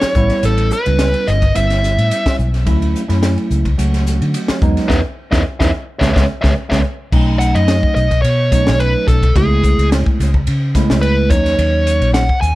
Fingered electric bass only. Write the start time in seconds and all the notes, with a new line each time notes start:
0.02 muted fingered electric bass stroke
0.15 A1
0.43 A1
0.87 C#2
1.28 G1
1.56 G1
1.98 A2
2.26 muted fingered electric bass stroke
2.39 B1
2.67 D2
3.09 F#2
3.51 C#2
3.79 C#2
4.22 D3
4.49 muted fingered electric bass stroke
4.62 E2
4.90 E2
5.33 E2
5.61 E2
6.01 C#2
6.16 C#2
6.44 C#2
6.71 C#2
7.12 B1
7.56 F#2
7.83 muted fingered electric bass stroke
7.96 B1
8.24 B2
8.67 B1
9.08 B1
9.36 C#2
9.78 C#2
10.20 C#2
10.48 C#3
10.90 C#2
11.31 D#2
11.58 D#2
12.01 A#1
12.29 muted fingered electric bass stroke
12.42 D#2